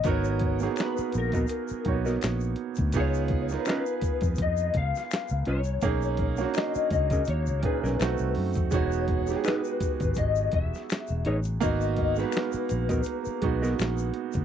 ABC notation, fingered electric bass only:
X:1
M:4/4
L:1/16
Q:"Swing 16ths" 1/4=83
K:G#m
V:1 name="Fingered electric bass" clef=bass
G,,,4 z2 A,,,2 z2 B,,,2 A,,,2 z =D,, | C,,4 z3 ^E,, E,,2 C,, z2 C,, ^B,,,2 | B,,,4 z2 C,,2 D,, C,, z B,,, B,,, =C,, F,, ^E,, | E,,,4 z3 G,,, G,,,2 E,,, z2 E,,, =A,,,2 |
G,,,4 z2 A,,,2 z2 B,,,2 A,,,2 z =D,, |]